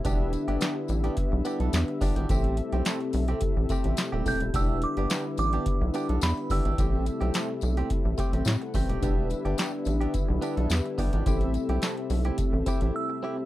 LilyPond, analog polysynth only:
\new Staff \with { instrumentName = "Analog polysynth" } { \time 4/4 \key e \minor \tempo 4 = 107 << { r1 | r1 | r1 | r2. <g' e''>16 <a' fis''>16 <b' g''>16 <g' e''>16~ |
<g' e''>16 r2. r8. | r1 | } \\ { <d' g' b' e''>1 | <c' g' a' e''>1 | <d' g' e''>1 | <c' g' a' e''>1 |
<d' g' b' e''>1 | <c' g' a' e''>1 | } >> }